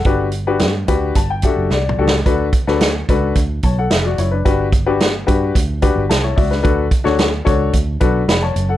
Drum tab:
HH |x-----x-----x-----x-----x-----x-----------------|x-----x-----x-----x-----x-----x-----x-----x-----|x-----x-----x-----x-----x-----x-----x-----o-----|x-----x-----x-----x-----x-----x-----x-----x-----|
SD |------------o-----------------------o-------o---|---------o--o-----------------------o-----------|------------o-----------------------o--------o--|---------o--o-----------------------o-----------|
T2 |----------------------------------------o-------|------------------------------------------------|------------------------------------------------|------------------------------------------------|
BD |o-----------------o-----o-----o-----------------|o-----o-----------o-----o-----o-----------------|o-----o-----------o-----o-----o-----------o-----|o-----o-----------o-----o-----o-----------------|